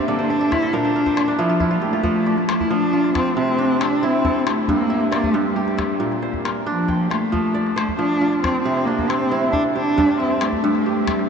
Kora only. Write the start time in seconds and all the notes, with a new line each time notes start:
Already playing: G2 D4 E5
0.08 D3 D5
0.19 C5
0.30 D5
0.41 E5
0.51 F5
0.62 A4
0.73 A#2 A#4
0.85 C5
0.96 A#4
1.06 C5
1.16 D5
1.28 D4
1.38 F3 E4
1.49 F4
1.60 E4
1.71 F4
1.82 G4
1.93 F4
2.03 F3
2.26 D5
2.49 C5
2.71 F3
2.93 F4
3.14 D5
3.37 C3
3.58 D4
3.81 C4
4.03 E4
4.25 A4
4.46 G4
4.69 G2
4.90 E5
5.11 D5
5.34 G2
5.56 G4
5.77 E5
6.00 A#2
6.22 C5
6.45 A#4
6.66 D4
6.88 G5
7.10 F5
7.32 F3
7.54 D5
7.76 C5
7.99 F3
8.21 F4
8.44 D5
8.65 C3
8.87 D4
9.09 C4
9.31 E4
9.53 A4
9.75 G4
9.98 G2
10.20 E5
10.42 D5
10.64 G2
10.86 G4
11.08 E5